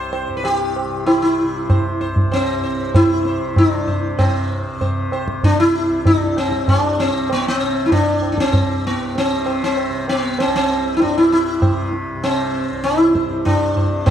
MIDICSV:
0, 0, Header, 1, 4, 480
1, 0, Start_track
1, 0, Tempo, 623701
1, 1302, Time_signature, 4, 2, 24, 8
1, 5615, Tempo, 615385
1, 10925, End_track
2, 0, Start_track
2, 0, Title_t, "Sitar"
2, 0, Program_c, 0, 104
2, 0, Note_on_c, 0, 72, 84
2, 87, Note_off_c, 0, 72, 0
2, 96, Note_on_c, 0, 72, 34
2, 280, Note_off_c, 0, 72, 0
2, 283, Note_on_c, 0, 71, 56
2, 335, Note_off_c, 0, 71, 0
2, 344, Note_on_c, 0, 67, 81
2, 816, Note_off_c, 0, 67, 0
2, 819, Note_on_c, 0, 64, 68
2, 930, Note_off_c, 0, 64, 0
2, 939, Note_on_c, 0, 64, 66
2, 1306, Note_on_c, 0, 72, 35
2, 1528, Note_off_c, 0, 72, 0
2, 1546, Note_on_c, 0, 72, 36
2, 1632, Note_off_c, 0, 64, 0
2, 1769, Note_off_c, 0, 72, 0
2, 1782, Note_on_c, 0, 72, 35
2, 1796, Note_on_c, 0, 60, 76
2, 2006, Note_off_c, 0, 72, 0
2, 2028, Note_on_c, 0, 72, 36
2, 2250, Note_off_c, 0, 72, 0
2, 2266, Note_on_c, 0, 72, 33
2, 2275, Note_on_c, 0, 64, 93
2, 2285, Note_off_c, 0, 60, 0
2, 2489, Note_off_c, 0, 72, 0
2, 2511, Note_on_c, 0, 72, 35
2, 2732, Note_off_c, 0, 72, 0
2, 2754, Note_off_c, 0, 64, 0
2, 2757, Note_on_c, 0, 62, 82
2, 2984, Note_on_c, 0, 72, 34
2, 3208, Note_off_c, 0, 72, 0
2, 3223, Note_on_c, 0, 60, 63
2, 3245, Note_off_c, 0, 62, 0
2, 3703, Note_on_c, 0, 72, 34
2, 3912, Note_off_c, 0, 60, 0
2, 3926, Note_off_c, 0, 72, 0
2, 3947, Note_on_c, 0, 72, 35
2, 4168, Note_off_c, 0, 72, 0
2, 4189, Note_on_c, 0, 62, 86
2, 4305, Note_off_c, 0, 62, 0
2, 4308, Note_on_c, 0, 64, 95
2, 4665, Note_off_c, 0, 64, 0
2, 4668, Note_on_c, 0, 62, 87
2, 4909, Note_on_c, 0, 60, 77
2, 4911, Note_off_c, 0, 62, 0
2, 5147, Note_on_c, 0, 62, 76
2, 5151, Note_off_c, 0, 60, 0
2, 5386, Note_on_c, 0, 60, 80
2, 5389, Note_off_c, 0, 62, 0
2, 5628, Note_off_c, 0, 60, 0
2, 5637, Note_on_c, 0, 59, 78
2, 5751, Note_off_c, 0, 59, 0
2, 5760, Note_on_c, 0, 60, 72
2, 6054, Note_on_c, 0, 64, 64
2, 6070, Note_off_c, 0, 60, 0
2, 6099, Note_off_c, 0, 64, 0
2, 6102, Note_on_c, 0, 62, 87
2, 6406, Note_off_c, 0, 62, 0
2, 6415, Note_on_c, 0, 62, 58
2, 6463, Note_off_c, 0, 62, 0
2, 6478, Note_on_c, 0, 60, 80
2, 6837, Note_off_c, 0, 60, 0
2, 6841, Note_on_c, 0, 59, 75
2, 7080, Note_off_c, 0, 59, 0
2, 7083, Note_on_c, 0, 60, 79
2, 7308, Note_on_c, 0, 72, 35
2, 7433, Note_off_c, 0, 60, 0
2, 7442, Note_on_c, 0, 60, 79
2, 7530, Note_off_c, 0, 72, 0
2, 7770, Note_off_c, 0, 60, 0
2, 7796, Note_on_c, 0, 59, 72
2, 8034, Note_off_c, 0, 59, 0
2, 8037, Note_on_c, 0, 60, 82
2, 8148, Note_off_c, 0, 60, 0
2, 8158, Note_on_c, 0, 60, 82
2, 8459, Note_off_c, 0, 60, 0
2, 8478, Note_on_c, 0, 64, 61
2, 8507, Note_off_c, 0, 64, 0
2, 8517, Note_on_c, 0, 62, 80
2, 8635, Note_off_c, 0, 62, 0
2, 8641, Note_on_c, 0, 64, 85
2, 8747, Note_off_c, 0, 64, 0
2, 8757, Note_on_c, 0, 64, 77
2, 8989, Note_on_c, 0, 72, 34
2, 9199, Note_off_c, 0, 64, 0
2, 9210, Note_off_c, 0, 72, 0
2, 9468, Note_on_c, 0, 60, 81
2, 9706, Note_on_c, 0, 72, 34
2, 9927, Note_off_c, 0, 72, 0
2, 9936, Note_on_c, 0, 64, 94
2, 9959, Note_off_c, 0, 60, 0
2, 10179, Note_on_c, 0, 72, 32
2, 10402, Note_off_c, 0, 72, 0
2, 10413, Note_off_c, 0, 64, 0
2, 10416, Note_on_c, 0, 62, 84
2, 10663, Note_on_c, 0, 72, 31
2, 10883, Note_off_c, 0, 72, 0
2, 10891, Note_on_c, 0, 60, 67
2, 10910, Note_off_c, 0, 62, 0
2, 10925, Note_off_c, 0, 60, 0
2, 10925, End_track
3, 0, Start_track
3, 0, Title_t, "Tanpura"
3, 0, Program_c, 1, 104
3, 0, Note_on_c, 1, 36, 54
3, 0, Note_on_c, 1, 43, 56
3, 0, Note_on_c, 1, 48, 58
3, 212, Note_off_c, 1, 43, 0
3, 215, Note_on_c, 1, 43, 60
3, 658, Note_off_c, 1, 48, 0
3, 658, Note_on_c, 1, 48, 56
3, 1109, Note_off_c, 1, 48, 0
3, 1109, Note_on_c, 1, 48, 52
3, 1545, Note_off_c, 1, 36, 0
3, 1548, Note_on_c, 1, 36, 61
3, 1994, Note_off_c, 1, 43, 0
3, 1997, Note_on_c, 1, 43, 51
3, 2432, Note_off_c, 1, 48, 0
3, 2432, Note_on_c, 1, 48, 57
3, 2873, Note_off_c, 1, 48, 0
3, 2873, Note_on_c, 1, 48, 55
3, 3227, Note_off_c, 1, 43, 0
3, 3227, Note_on_c, 1, 43, 59
3, 3666, Note_off_c, 1, 48, 0
3, 3666, Note_on_c, 1, 48, 52
3, 4107, Note_off_c, 1, 48, 0
3, 4107, Note_on_c, 1, 48, 51
3, 4540, Note_off_c, 1, 36, 0
3, 4543, Note_on_c, 1, 36, 55
3, 4987, Note_off_c, 1, 43, 0
3, 4987, Note_on_c, 1, 43, 54
3, 5427, Note_off_c, 1, 48, 0
3, 5427, Note_on_c, 1, 48, 54
3, 5869, Note_off_c, 1, 48, 0
3, 5869, Note_on_c, 1, 48, 55
3, 6304, Note_off_c, 1, 36, 0
3, 6307, Note_on_c, 1, 36, 56
3, 6753, Note_off_c, 1, 43, 0
3, 6756, Note_on_c, 1, 43, 58
3, 7201, Note_off_c, 1, 48, 0
3, 7201, Note_on_c, 1, 48, 62
3, 7646, Note_off_c, 1, 48, 0
3, 7646, Note_on_c, 1, 48, 58
3, 8082, Note_off_c, 1, 36, 0
3, 8085, Note_on_c, 1, 36, 59
3, 8519, Note_off_c, 1, 43, 0
3, 8523, Note_on_c, 1, 43, 63
3, 8964, Note_off_c, 1, 48, 0
3, 8964, Note_on_c, 1, 48, 57
3, 9410, Note_off_c, 1, 48, 0
3, 9410, Note_on_c, 1, 48, 58
3, 9838, Note_off_c, 1, 36, 0
3, 9841, Note_on_c, 1, 36, 59
3, 10276, Note_off_c, 1, 43, 0
3, 10279, Note_on_c, 1, 43, 51
3, 10724, Note_off_c, 1, 48, 0
3, 10724, Note_on_c, 1, 48, 54
3, 10925, Note_off_c, 1, 36, 0
3, 10925, Note_off_c, 1, 43, 0
3, 10925, Note_off_c, 1, 48, 0
3, 10925, End_track
4, 0, Start_track
4, 0, Title_t, "Tabla"
4, 98, Note_on_c, 9, 60, 59
4, 175, Note_off_c, 9, 60, 0
4, 338, Note_on_c, 9, 60, 73
4, 415, Note_off_c, 9, 60, 0
4, 587, Note_on_c, 9, 60, 58
4, 664, Note_off_c, 9, 60, 0
4, 826, Note_on_c, 9, 60, 67
4, 903, Note_off_c, 9, 60, 0
4, 1305, Note_on_c, 9, 60, 73
4, 1305, Note_on_c, 9, 64, 63
4, 1382, Note_off_c, 9, 60, 0
4, 1382, Note_off_c, 9, 64, 0
4, 1547, Note_on_c, 9, 62, 59
4, 1624, Note_off_c, 9, 62, 0
4, 1663, Note_on_c, 9, 64, 57
4, 1740, Note_off_c, 9, 64, 0
4, 1786, Note_on_c, 9, 60, 72
4, 1863, Note_off_c, 9, 60, 0
4, 2266, Note_on_c, 9, 60, 70
4, 2266, Note_on_c, 9, 64, 71
4, 2343, Note_off_c, 9, 60, 0
4, 2343, Note_off_c, 9, 64, 0
4, 2503, Note_on_c, 9, 62, 57
4, 2580, Note_off_c, 9, 62, 0
4, 2742, Note_on_c, 9, 60, 67
4, 2742, Note_on_c, 9, 64, 65
4, 2819, Note_off_c, 9, 60, 0
4, 2819, Note_off_c, 9, 64, 0
4, 2981, Note_on_c, 9, 64, 51
4, 3058, Note_off_c, 9, 64, 0
4, 3222, Note_on_c, 9, 60, 92
4, 3222, Note_on_c, 9, 64, 87
4, 3299, Note_off_c, 9, 60, 0
4, 3299, Note_off_c, 9, 64, 0
4, 3703, Note_on_c, 9, 63, 66
4, 3703, Note_on_c, 9, 64, 60
4, 3780, Note_off_c, 9, 63, 0
4, 3780, Note_off_c, 9, 64, 0
4, 3942, Note_on_c, 9, 60, 59
4, 4019, Note_off_c, 9, 60, 0
4, 4061, Note_on_c, 9, 37, 51
4, 4138, Note_off_c, 9, 37, 0
4, 4182, Note_on_c, 9, 63, 74
4, 4182, Note_on_c, 9, 64, 63
4, 4259, Note_off_c, 9, 63, 0
4, 4259, Note_off_c, 9, 64, 0
4, 4659, Note_on_c, 9, 63, 67
4, 4659, Note_on_c, 9, 64, 58
4, 4736, Note_off_c, 9, 63, 0
4, 4736, Note_off_c, 9, 64, 0
4, 4902, Note_on_c, 9, 60, 55
4, 4978, Note_off_c, 9, 60, 0
4, 5020, Note_on_c, 9, 37, 59
4, 5097, Note_off_c, 9, 37, 0
4, 5140, Note_on_c, 9, 60, 70
4, 5140, Note_on_c, 9, 64, 63
4, 5217, Note_off_c, 9, 60, 0
4, 5217, Note_off_c, 9, 64, 0
4, 5378, Note_on_c, 9, 62, 55
4, 5455, Note_off_c, 9, 62, 0
4, 5614, Note_on_c, 9, 60, 68
4, 5692, Note_off_c, 9, 60, 0
4, 6100, Note_on_c, 9, 63, 72
4, 6100, Note_on_c, 9, 64, 65
4, 6178, Note_off_c, 9, 63, 0
4, 6178, Note_off_c, 9, 64, 0
4, 6337, Note_on_c, 9, 60, 53
4, 6415, Note_off_c, 9, 60, 0
4, 6459, Note_on_c, 9, 37, 56
4, 6537, Note_off_c, 9, 37, 0
4, 6578, Note_on_c, 9, 63, 70
4, 6578, Note_on_c, 9, 64, 61
4, 6656, Note_off_c, 9, 63, 0
4, 6656, Note_off_c, 9, 64, 0
4, 7066, Note_on_c, 9, 63, 76
4, 7144, Note_off_c, 9, 63, 0
4, 7303, Note_on_c, 9, 60, 59
4, 7381, Note_off_c, 9, 60, 0
4, 7546, Note_on_c, 9, 60, 68
4, 7624, Note_off_c, 9, 60, 0
4, 7789, Note_on_c, 9, 60, 55
4, 7867, Note_off_c, 9, 60, 0
4, 8026, Note_on_c, 9, 60, 73
4, 8104, Note_off_c, 9, 60, 0
4, 8271, Note_on_c, 9, 60, 61
4, 8349, Note_off_c, 9, 60, 0
4, 8506, Note_on_c, 9, 60, 67
4, 8584, Note_off_c, 9, 60, 0
4, 8988, Note_on_c, 9, 60, 72
4, 8988, Note_on_c, 9, 64, 63
4, 9066, Note_off_c, 9, 60, 0
4, 9066, Note_off_c, 9, 64, 0
4, 9227, Note_on_c, 9, 62, 59
4, 9305, Note_off_c, 9, 62, 0
4, 9467, Note_on_c, 9, 60, 70
4, 9545, Note_off_c, 9, 60, 0
4, 9947, Note_on_c, 9, 62, 75
4, 10025, Note_off_c, 9, 62, 0
4, 10067, Note_on_c, 9, 62, 56
4, 10145, Note_off_c, 9, 62, 0
4, 10183, Note_on_c, 9, 37, 56
4, 10261, Note_off_c, 9, 37, 0
4, 10307, Note_on_c, 9, 62, 52
4, 10385, Note_off_c, 9, 62, 0
4, 10425, Note_on_c, 9, 60, 70
4, 10425, Note_on_c, 9, 64, 61
4, 10503, Note_off_c, 9, 60, 0
4, 10503, Note_off_c, 9, 64, 0
4, 10661, Note_on_c, 9, 64, 52
4, 10739, Note_off_c, 9, 64, 0
4, 10897, Note_on_c, 9, 60, 87
4, 10897, Note_on_c, 9, 64, 78
4, 10925, Note_off_c, 9, 60, 0
4, 10925, Note_off_c, 9, 64, 0
4, 10925, End_track
0, 0, End_of_file